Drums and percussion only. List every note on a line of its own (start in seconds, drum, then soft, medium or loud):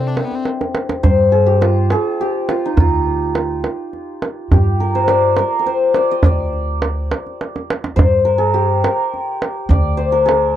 0.17 tombak tek medium
0.32 tombak ka soft
0.45 tombak tek medium
0.61 tombak ka medium
0.75 tombak tek medium
0.89 tombak ka medium
1.04 tombak dum medium
1.33 tombak ka soft
1.62 tombak tek medium
1.90 tombak tek medium
2.20 tombak ka soft
2.49 tombak tek medium
2.77 tombak dum medium
3.06 tombak ka soft
3.35 tombak tek medium
3.64 tombak tek medium
3.93 tombak ka soft
4.22 tombak tek medium
4.51 tombak dum medium
4.80 tombak ka soft
5.08 tombak tek medium
5.37 tombak tek medium
5.66 tombak ka soft
5.94 tombak tek medium
6.23 tombak dum medium
6.53 tombak ka soft
6.82 tombak tek medium
7.11 tombak tek medium
7.27 tombak ka soft
7.41 tombak tek soft
7.56 tombak ka medium
7.70 tombak tek medium
7.84 tombak ka medium
7.99 tombak dum loud
8.84 tombak tek medium
9.14 tombak ka soft
9.42 tombak tek medium
9.71 tombak dum medium
10.00 tombak ka soft
10.29 tombak tek medium